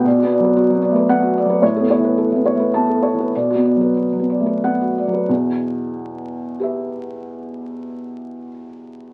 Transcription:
<<
  \new Staff \with { instrumentName = "Felt piano" } { \time 3/4 \key e \dorian \tempo 4 = 94 << { r2 fis''8 r8 | r2 a''8 r8 | r2 fis''8 r8 | r2 <g' b' e''>4~ |
<g' b' e''>2. | } \\ { d''16 fis'16 d''16 b'16 fis'16 fis16 d''16 b'8 fis'16 d''16 b'16 | cis''16 a'16 cis''16 b'16 a'16 e16 cis''16 b'8 a'16 cis''16 b'16 | d''16 fis'16 d''16 b'16 fis'16 fis16 d''16 b'8 fis'16 d''16 b'16 | r2. |
r2. | } >> }
  \new Staff \with { instrumentName = "Felt piano" } { \time 3/4 \key e \dorian \tuplet 3/2 { b,8 b8 fis8~ fis8 b8 a8 b4 fis8 } | \tuplet 3/2 { a,8 b8 e8~ e8 b8 a8 b4 e8 } | \tuplet 3/2 { b,8 b8 fis8~ fis8 b8 a8 b4 fis8 } | <e, b,>2.~ |
<e, b,>2. | }
>>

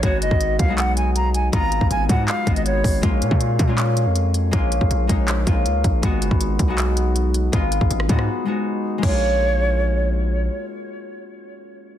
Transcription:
<<
  \new Staff \with { instrumentName = "Flute" } { \time 4/4 \key bes \phrygian \tempo 4 = 160 des''8 ees''4 f''8 ges''8 aes''8 bes''8 aes''8 | bes''4 aes''8 ges''8 f''8. ees''16 des''4 | r1 | r1 |
r1 | r1 | des''2. r4 | r1 | }
  \new Staff \with { instrumentName = "Harp" } { \time 4/4 \key bes \phrygian <aes ces' ees' ges'>4. r16 <aes ces' ees' ges'>4.~ <aes ces' ees' ges'>16 r8 | <aes ces' ees' f'>4~ <aes ces' ees' f'>16 r16 <aes ces' ees' ges'>4 <aes ces' ees' ges'>4~ <aes ces' ees' ges'>16 r16 | <aes bes des' f'>4. r16 <aes bes des' f'>4.~ <aes bes des' f'>16 r8 | <aes bes des' f'>4~ <aes bes des' f'>16 r16 <aes bes des' ees'>4 <aes bes des' f'>4~ <aes bes des' f'>16 r16 |
<aes ces' ees' ges'>4. r16 <aes ces' ees' ges'>4.~ <aes ces' ees' ges'>16 r8 | <aes ces' ees' f'>4~ <aes ces' ees' f'>16 r16 <aes ces' ees' ges'>4 <aes ces' ees' ges'>4~ <aes ces' ees' ges'>16 r16 | <aes bes des' f'>1~ | <aes bes des' f'>1 | }
  \new Staff \with { instrumentName = "808-style bass" } { \clef bass \time 4/4 \key bes \phrygian aes,,8 ges,,16 aes,,8. ces,2~ ces,8 | aes,,8. aes,,16 aes,,8 aes,8 r8 aes,,4 aes,,8 | bes,,8 bes,16 bes,8. bes,4~ bes,16 f,4~ f,16 | bes,,8. bes,,16 bes,,8 bes,,4 bes,,8 des,8 bes,,8 |
aes,,8 ges,,16 aes,,8. ces,2~ ces,8 | aes,,8. aes,,16 aes,,8 aes,8 r2 | bes,,1 | r1 | }
  \new DrumStaff \with { instrumentName = "Drums" } \drummode { \time 4/4 <hh bd>8 hh16 bd16 hh8 <hh bd>8 <hc hh>8 hh8 hh8 hh8 | <hh bd>8 hh16 bd16 hh8 <hh bd>8 <hc hh>8 <hh bd>16 hh16 hh8 <hho bd>8 | <hh bd>8 hh16 bd16 hh8 <hh bd>8 <hc hh>8 hh8 hh8 hh8 | <hh bd>8 hh16 bd16 hh8 <hh bd>8 <hc hh>8 <hh bd>8 hh8 <hh bd>8 |
<hh bd>8 hh16 bd16 hh8 <hh bd>8 <hc hh>8 hh8 hh8 hh8 | <hh bd>8 hh16 bd16 hh16 ss16 <hh bd>16 ss16 r4 r4 | <cymc bd>4 r4 r4 r4 | r4 r4 r4 r4 | }
>>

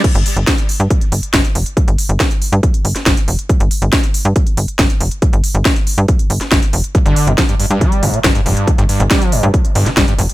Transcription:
<<
  \new Staff \with { instrumentName = "Acid bass" } { \clef bass \time 4/4 \key g \minor \tempo 4 = 139 r1 | r1 | r1 | r1 |
g,16 d8 bes,16 f16 g,16 g,16 g,16 g8 g,16 bes,16 f16 g,16 g,8 | g16 g,16 g,16 d16 g16 f16 g,16 bes,16 r8 g,16 d16 g16 g,16 g,16 r16 | }
  \new Staff \with { instrumentName = "Analog synth bass" } { \clef bass \time 4/4 \key g \minor r16 g,,16 r16 g,,16 r8. g,16 r8 g,,16 r16 g,,16 r16 f,,16 r16 | r16 g,,16 r16 g,,16 r8. g,16 r8 g,,16 r16 g,,16 r16 f,,16 r16 | r16 g,,16 r16 g,,16 r8. g,16 r8 g,,16 r16 g,,16 r16 f,,16 r16 | r16 g,,16 r16 g,,16 r8. g,16 r8 g,,16 r16 g,,16 r16 f,,16 r16 |
r16 g,,16 r16 g,,16 r8. g,16 r8 g,,16 r16 g,,16 r16 f,,16 r16 | r16 g,,16 r16 g,,16 r8. g,16 r8 g,,16 r16 g,,16 r16 f,,16 r16 | }
  \new DrumStaff \with { instrumentName = "Drums" } \drummode { \time 4/4 <cymc hh bd>16 hh16 hho16 hh16 <hh bd sn>16 hh16 hho16 hh16 <hh bd>16 hh16 hho16 hh16 <hh bd sn>16 hh16 hho16 hh16 | <hh bd>16 hh16 hho16 hh16 <hh bd sn>16 hh16 hho16 hh16 <hh bd>16 hh16 hho16 <hh sn>16 <hh bd sn>16 hh16 hho16 hh16 | <hh bd>16 hh16 hho16 hh16 <hh bd sn>16 hh16 hho16 hh16 <hh bd>16 hh16 hho16 hh16 <hh bd sn>16 hh16 hho16 hh16 | <hh bd>16 hh16 hho16 hh16 <hh bd sn>16 hh16 hho16 hh16 <hh bd>16 hh16 hho16 <hh sn>16 <hh bd sn>16 hh16 hho16 hh16 |
<hh bd>16 hh16 hho16 hh16 <hh bd sn>16 hh16 hho16 hh16 <hh bd>16 hh16 hho16 hh16 <hh bd sn>16 hh16 hho16 hh16 | <hh bd>16 hh16 hho16 hh16 <hh bd sn>16 hh16 hho16 hh16 <hh bd>16 hh16 hho16 <hh sn>16 <hh bd sn>16 hh16 hho16 hh16 | }
>>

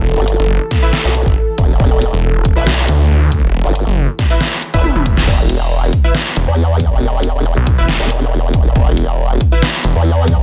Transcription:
<<
  \new Staff \with { instrumentName = "Supersaw synth" } { \time 4/4 \key e \minor \tempo 4 = 138 r4. r16 <e' b' e''>16 r2 | r4. r16 <e' b' e''>16 r2 | r4. r16 <e' b' e''>16 r8. <e' b' e''>4~ <e' b' e''>16 | r4. r16 <e' b' e''>16 r2 |
r4. r16 <e' b' e''>16 r2 | r4. r16 <e' b' e''>16 r2 | }
  \new Staff \with { instrumentName = "Analog synth pad" } { \time 4/4 \key e \minor <e e' g' a'>1~ | <e e' g' a'>1~ | <e e' g' a'>1 | r1 |
r1 | r1 | }
  \new Staff \with { instrumentName = "Detuned saw bass" } { \clef bass \time 4/4 \key e \minor e,,16 r8 fis,,8 r4. g,,16 r4 | r8. e,,4 r8. d,8 d,8. e,,16~ | e,,16 r8 fis,,8 r2 e,,8. | r2 r8 e,,16 r4 r16 |
r4 r16 b,,8 e,,8 r4. r16 | r2 r8 e,,16 r4 r16 | }
  \new Staff \with { instrumentName = "Wobble bass" } { \clef bass \time 4/4 \key e \minor r16 g,,8 r4. b,,8 r8. e,,8 | e,,8. r4 b,,8. r4. | r16 g,,8 r2 e,,8 r8. | e,,4. r4 r16 e,4 e,,16~ |
e,,8. e,,8 r4 e,,4.~ e,,16 | e,,4. r4 r16 e,4 e,,16 | }
  \new DrumStaff \with { instrumentName = "Drums" } \drummode { \time 4/4 r8 hh8 r8 <hh bd sn>8 sn8 hh16 bd16 r8 <hh bd>8 | bd8 hh8 r8 <hh bd>8 sn8 hh8 r8 <hh bd>8 | r8 hh8 r8 <hh bd sn>8 sn8 hh16 <hh bd>16 tommh16 tommh16 <hh bd>16 sn16 | <cymc bd>8 hh8 r8 <hh bd>8 sn8 hh8 r8 <hh bd>8 |
r8 hh8 r8 <hh bd>8 sn8 hh8 r8 <hh bd>8 | bd8 hh8 r8 <hh bd>8 sn8 hh8 r8 <hh bd>8 | }
>>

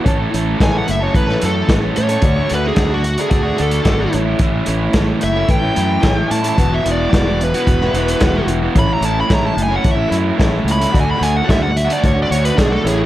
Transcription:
<<
  \new Staff \with { instrumentName = "Lead electric guitar" } { \time 4/4 \key a \major \tempo 4 = 110 r4 gis''16 fis''16 e''16 cis''16 b'8 a'8 r8 cis''8~ | cis''8 b'16 gis'8 fis'8 gis'8. a'4 r8 | r4. e''8 g''4. a''16 a''16~ | a''16 e''16 d''4 b'2 r8 |
b''16 ais''16 a''16 b''16 ais''16 a''16 gis''16 fis''16 e''8 r4 b''8 | gis''16 b''16 gis''16 fis''16 e''16 fis''16 e''16 d''16 cis''16 d''16 cis''16 b'16 gis'16 a'16 gis'16 r16 | }
  \new Staff \with { instrumentName = "Upright piano" } { \time 4/4 \key a \major <e' a' cis''>4 <e' a' b'>4 <e' a' cis''>4 <e' a' b'>4 | <fis' a' d''>4 <fis' a' d''>4 <fis' a' d''>4 <fis' a' d''>8 <e' a' cis''>8~ | <e' a' cis''>8 r8 <e' a' cis''>4 <e' a' b'>4 <e' a' cis''>4 | <e' fis' b'>4 <e' fis' b'>4 <e' fis' b'>4 <e' fis' b'>4 |
<e' a' cis''>4 <e' a' cis''>4 <e' a' cis''>4 <e' a' cis''>4 | <fis' a' d''>4 <fis' a' d''>4 <fis' a' d''>4 <fis' a' d''>8 <e' a' cis''>8 | }
  \new Staff \with { instrumentName = "Overdriven electric guitar" } { \time 4/4 \key a \major <a, e a cis' a'>16 <a cis' a'>16 <e a cis' a'>8 <a, e a cis' a'>16 <a cis' a'>8 <a cis' a'>8 <a cis' a'>16 <e a cis' a'>8 <a, e a cis' a'>16 <a cis' a'>8 <a cis' a'>16 | <d a d' fis'>16 <a d' fis'>16 <d a d' fis'>8 <d a d' fis'>16 <a d' fis'>8 <a d' fis'>8 <a d' fis'>16 <d a d' fis'>8 <d a d' fis'>16 <a d' fis'>16 <a, e a cis' e'>16 <a cis' e'>16 | <a, e a cis' e'>16 <a cis' e'>16 <e a cis' e'>8 <a, e a cis' e'>16 <a cis' e'>8 <a cis' e'>8 <a cis' e'>16 <e a cis' e'>8 <a, e a cis' e'>16 <a cis' e'>8 <a cis' e'>16 | <e, b, e b e' fis'>16 <e b e' fis'>16 <e b e' fis'>8 <e, b, e b e' fis'>16 <e b e' fis'>8 <e b e' fis'>8 <e b e' fis'>16 <e b e' fis'>8 <e, b, e b e' fis'>16 <e b e' fis'>8 <e b e' fis'>16 |
<a, e a cis' e'>16 <a cis' e'>16 <e a cis' e'>8 <a, e a cis' e'>16 <a cis' e'>8 <a cis' e'>8 <a cis' e'>16 <e a cis' e'>8 <a, e a cis' e'>16 <a cis' e'>8 <a cis' e'>16 | <d a d' fis'>16 <a d' fis'>16 <d a d' fis'>8 <d a d' fis'>16 <a d' fis'>8 <a d' fis'>8 <a d' fis'>16 <d a d' fis'>8 <d a d' fis'>16 <a d' fis'>16 <a, e a cis' e'>16 <a cis' e'>16 | }
  \new Staff \with { instrumentName = "Fingered electric bass" } { \clef bass \time 4/4 \key a \major a,,8 a,,8 a,,8 fis,,8 a,,8 fis,8 a,,8 a,8 | d,8 d,8 d,4 d,8 d,8 gis,,8 a,,8 | a,,8 a,,8 a,,8 fis,,8 a,,8 fis,8 a,,8 a,8 | e,,8 e,,8 e,,4 e,,8 e,,8 e,,8 e,,8 |
a,,8 a,,8 a,,8 fis,,8 a,,8 fis,8 a,,8 cis,8 | d,8 d,8 d,4 d,8 d,8 b,,8 a,,8 | }
  \new DrumStaff \with { instrumentName = "Drums" } \drummode { \time 4/4 <hh bd>8 hh8 <hh bd sn>8 hh8 <hh bd>16 sn16 hh8 <hh bd sn>8 hh16 hh16 | <hh bd>8 hh8 <hh bd sn>8 hh16 hh16 <hh bd>8 hh16 hh16 <hh bd sn>8 hh8 | <hh bd>8 hh8 <hh bd sn>8 hh8 <hh bd>8 hh8 <hh bd sn>8 hh16 hh16 | <hh bd>8 hh8 <hh bd sn>8 hh16 hh16 <hh bd>16 sn16 hh16 hh16 <hh bd sn>8 hh8 |
<hh bd>8 hh8 <hh bd sn>8 hh8 <hh bd>8 hh8 <hh bd sn>8 hh16 hh16 | <hh bd>8 hh8 <hh bd sn>8 hh16 hh16 <hh bd>8 hh16 hh16 <hh bd sn>8 hh8 | }
>>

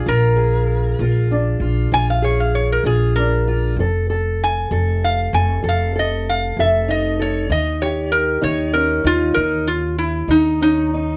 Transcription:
<<
  \new Staff \with { instrumentName = "Resonator guitar played with a steel bar" } { \time 12/8 \key f \dorian \tempo 4. = 64 bes'2 r4 aes''16 f''16 des''16 f''16 des''16 bes'16 aes'8 bes'4 | r4 aes''4 f''8 aes''8 f''8 ees''8 f''8 e''8 ees''8 des''8 | ees''8 des''8 bes'8 des''8 bes'8 f'8 bes'8 f'8 e'8 ees'8 ees'4 | }
  \new Staff \with { instrumentName = "Steel-string acoustic guitar" } { \time 12/8 \key f \dorian << { f'8 aes'4 f'8 d'8 f'8 f'8 aes'4 f'8 d'8 f'8 | a'8 a'4 a'4 a'8 a'8 a'4 a'8 ees'8 a'8 | ees'8 g'4 ees'8 des'8 ees'8 ees'8 r4 ees'8 des'8 ees'8 | } \\ { bes,4 r8 bes,4 r8 bes,4 r8 bes,4 r8 | f4 r8 f4 r8 f4 r8 f4 r8 | ees4 r8 ees4 r8 ees4 r8 ees4 r8 | } >> }
  \new Staff \with { instrumentName = "Upright bass" } { \clef bass \time 12/8 \key f \dorian bes,,4. bes,,4 bes,,8 bes,,4. bes,,4. | f,,4. f,,4 f,,8 f,,4. f,,4. | ees,4. ees,4 ees,8 ees,4. ees,4. | }
>>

